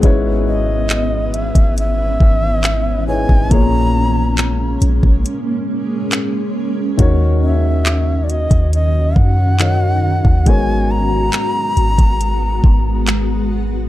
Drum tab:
HH |x---x-xxx---x---|x---x-x-x---x---|x---x-xxx---x---|x---x-xxx---x---|
CP |----x-------x---|----x-------x---|----x-------x---|----x-------x---|
BD |o------o--o----o|o------o--------|o------o--o----o|o------o--o-----|